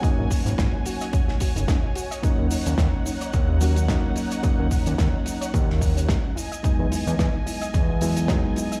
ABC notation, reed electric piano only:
X:1
M:4/4
L:1/8
Q:"Swing 16ths" 1/4=109
K:D#phr
V:1 name="Reed electric piano"
[F,A,CD]6 [F,A,CD] z | [F,A,CD]4- [F,A,CD] [F,A,CF] [F,A,CD]2 | [F,A,CD]6 [F,A,CD] z | [F,G,B,D]4- [F,G,B,D] [F,G,B,E] [F,G,B,D]2 |]